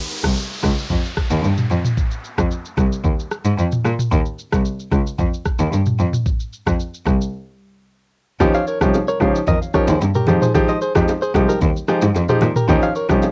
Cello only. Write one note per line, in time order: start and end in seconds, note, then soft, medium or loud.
0.24 0.32 C2 medium
0.63 0.71 C#2 medium
0.90 0.98 F2 medium
1.31 1.39 D#2 medium
1.44 1.52 G2 medium
1.71 1.79 F2 medium
2.38 2.46 F2 medium
2.78 2.86 C2 medium
3.05 3.13 D#2 medium
3.45 3.53 G#2 medium
3.58 3.66 F2 medium
3.85 3.93 A#2 medium
4.12 4.20 D#2 loud
4.53 4.61 C2 medium
4.92 5.00 C#2 medium
5.19 5.27 F2 medium
5.60 5.68 D#2 medium
5.72 5.80 G2 medium
5.99 6.07 F2 medium
6.67 6.75 F2 medium
7.06 7.14 C2 medium
8.40 8.48 D#2 loud
8.81 8.89 C2 medium
9.21 9.29 C#2 medium
9.47 9.55 F2 medium
9.88 9.96 D#2 medium
10.01 10.09 G2 medium
10.28 10.36 F2 medium
10.95 11.03 F2 medium
11.35 11.43 C2 medium
11.62 11.70 D#2 medium
12.02 12.10 G#2 medium
12.15 12.23 F2 medium
12.42 12.50 A#2 medium
12.69 12.77 D#2 loud
13.10 13.18 C2 medium